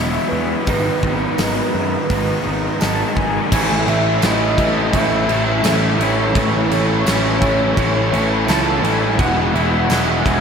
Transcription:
Already playing: picked electric bass E1, distorted electric guitar E2 B2 E3, overdriven electric guitar E3 G#3 B3 E4, soft synth lead E5
0.28 picked electric bass E2, overdriven electric guitar E4, soft synth lead B4
0.33 overdriven electric guitar G#3 B3
0.67 picked electric bass G#1, overdriven electric guitar G#2 D#3 G#3 B3 D#4, clean electric guitar F#3, kick, open hi-hat
1.02 picked electric bass G#1, overdriven electric guitar G#3 B3 D#4, kick
1.38 picked electric bass G#1, clean electric guitar D#3 F#3 B3 D#4, snare, open hi-hat, tambourine
1.74 picked electric bass F#2
2.10 picked electric bass G#1, overdriven electric guitar G#2 D#3 G#3 B3 D#4, clean electric guitar F#3, kick, open hi-hat
2.45 picked electric bass G#1, clean electric guitar F#3 B3 D#4
2.80 picked electric bass G#1, overdriven electric guitar D#3 G#3 B3 D#4, clean electric guitar F#3, soft synth lead A5, snare, open hi-hat, tambourine
3.16 picked electric bass G#1, overdriven electric guitar G#3 B3 D#4, soft synth lead G#5, kick
3.52 picked electric bass A1, overdriven electric guitar A2 E3 A3 C#4 E4, kick, crash
3.87 picked electric bass A1, distorted electric guitar A2 E3, overdriven electric guitar C#4 E4, soft synth lead E5, crash
3.91 overdriven electric guitar A3
4.22 picked electric bass A1, distorted electric guitar A2, overdriven electric guitar E3 A3 C#4 E4, soft synth lead D#5, snare, tambourine, crash
4.57 picked electric bass A1, distorted electric guitar A2 E3, overdriven electric guitar C#4 E4, kick, crash
4.62 overdriven electric guitar A3
4.93 picked electric bass A1, overdriven electric guitar A2 E3 A3 C#4 E4, soft synth lead E5, kick, crash
5.27 picked electric bass A1, distorted electric guitar A2 E3, overdriven electric guitar C#4 E4, crash
5.31 overdriven electric guitar A3
5.62 picked electric bass A1, distorted electric guitar A2, overdriven electric guitar E3 A3 C#4 E4, snare, tambourine, crash
5.98 picked electric bass A1, distorted electric guitar A2 E3, overdriven electric guitar C#4 E4, crash
6.03 overdriven electric guitar A3, soft synth lead C#5
6.35 picked electric bass A1, overdriven electric guitar A2 E3 A3 C#4 E4, soft synth lead C#5, kick, crash
6.69 picked electric bass A1, distorted electric guitar A2 E3, overdriven electric guitar C#4 E4, crash
6.74 overdriven electric guitar A3
7.05 picked electric bass A1, distorted electric guitar A2, overdriven electric guitar E3 A3, snare, tambourine, crash
7.10 overdriven electric guitar C#4 E4
7.40 distorted electric guitar A2 E3, overdriven electric guitar C#4 E4, kick, crash
7.45 overdriven electric guitar A3
7.76 picked electric bass A1, overdriven electric guitar A2 E3 A3 C#4 E4, kick, crash
8.11 picked electric bass A1, distorted electric guitar A2 E3 A3, overdriven electric guitar E4, crash
8.16 overdriven electric guitar A3 C#4
8.47 picked electric bass C#2, distorted electric guitar A2, overdriven electric guitar E3 A3 C#4 E4, soft synth lead A5, snare, tambourine, crash
8.82 picked electric bass A1, distorted electric guitar A2 E3, clean electric guitar G#3, overdriven electric guitar C#4 E4, soft synth lead G#5, crash
8.87 overdriven electric guitar A3
9.18 picked electric bass E1, distorted electric guitar E2 B2, overdriven electric guitar E3 G#3 B3 E4, soft synth lead F#5, kick, crash
9.53 picked electric bass E1, distorted electric guitar E2 B2 E3, overdriven electric guitar G#3 B3 E4, soft synth lead E5, crash
9.73 soft synth lead F#5
9.89 picked electric bass E1, distorted electric guitar E2 B2, overdriven electric guitar E3 G#3 B3 E4, snare, tambourine, crash
10.23 picked electric bass E1, distorted electric guitar E2 B2 E3, overdriven electric guitar G#3 B3 E4, soft synth lead G#5, kick, crash

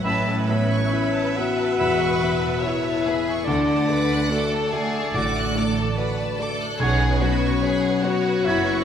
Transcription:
0.04 grand piano A1, double bass section A1, harp A2, cello section A2, french horn section C#4, viola section B4 E5, clarinet C#5, oboe E5, violin section E5 A5, flute section B5
0.29 violin section A5
0.49 harp E3, grand piano B3 E5, violin section B5
0.72 violin section C#6
0.92 harp E4, grand piano E4 E5, violin section B5
1.13 violin section A5
1.36 harp B3, grand piano B3 E5, french horn section F#4, violin section E5, clarinet F#5
1.58 violin section A5
1.79 double bass section E1, cello section E2, grand piano E2, harp A2, violin section B4 B5, oboe E5, flute section B5
2.01 violin section C#6
2.21 harp E3, grand piano B3 E5, violin section B5
2.43 violin section A5
2.62 harp E4, french horn section E4, grand piano E4, violin section C#5 E5, clarinet E5
2.66 grand piano E5
2.86 violin section A5
3.04 harp B3, grand piano B3 E5, violin section G#4 B5
3.28 violin section C#6
3.45 grand piano D2, double bass section D2, harp D3, cello section D3, viola section A3 D5, french horn section D4, violin section A4, clarinet D5, oboe D5, flute section F#5
3.50 violin section F#5
3.69 violin section A5
3.88 grand piano A3 D5, harp D4, violin section B4 D6
4.14 violin section F#6
4.29 french horn section A3, harp F#4, grand piano F#4 D5, clarinet A4, violin section A4
4.34 violin section D6
4.54 violin section A5
4.71 harp A3, grand piano A3 D5, violin section G#4 F#5
4.97 violin section A5
5.14 double bass section A1, grand piano A2, cello section A2, harp D3, violin section F#4 D6, oboe D5, flute section F#5
5.37 violin section F#6
5.55 grand piano A3 D5, harp D4, violin section A4
5.59 violin section D6
5.79 violin section A5
5.97 grand piano F#4 D5, harp F#4, violin section B4 F#5
6.22 violin section A5
6.38 grand piano A3 D5, harp A3, violin section A4 D6
6.62 violin section F#6
6.79 grand piano B1, double bass section B1, harp B2, cello section B2, french horn section C#4, violin section G#4 C#5 F#5, viola section B4 C#5, clarinet C#5, oboe C#5, flute section F#5
7.04 violin section F#5
7.20 harp F#3, grand piano B3 C#5, violin section F#4 B5
7.42 violin section C#6
7.62 grand piano F#4 C#5, harp F#4, violin section G#4 B5
7.82 violin section F#5
8.03 harp B3, grand piano B3 C#5, violin section F#4 C#5, french horn section F#4, clarinet F#5
8.26 violin section F#5
8.45 double bass section F#1, grand piano F#2, cello section F#2, harp B2, french horn section E4, oboe C#5, clarinet E5, flute section F#5, violin section B5
8.68 violin section C#6

